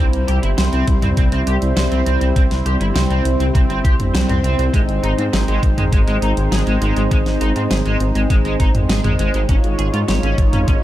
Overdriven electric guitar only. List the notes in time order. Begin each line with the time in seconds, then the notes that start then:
0.28 G4
0.43 E4
0.58 C5
0.73 C4
1.02 C4
1.17 C4
1.32 C4
1.47 G4
1.77 C5
1.92 C4
2.06 C4
2.21 C4
2.36 C4
2.66 G4
2.81 E4
2.95 C5
3.10 C4
3.40 C4
3.55 C4
3.70 C4
3.84 G4
4.14 C5
4.29 C4
4.44 C4
4.59 C4
4.74 G#3
5.03 D#4
5.18 C4
5.33 G#4
5.48 G#3
5.78 G#3
5.93 G#3
6.07 G#3
6.22 D#4
6.52 G#4
6.67 G#3
6.82 G#3
6.97 G#3
7.11 G#3
7.41 D#4
7.56 C4
7.71 G#4
7.86 G#3
8.15 G#3
8.30 G#3
8.45 G#3
8.60 D#4
8.90 G#4
9.04 G#3
9.19 G#3
9.34 G#3
9.49 C#4
9.79 G#4
9.94 F4
10.08 C#5
10.23 C#4
10.53 C#4
10.68 C#4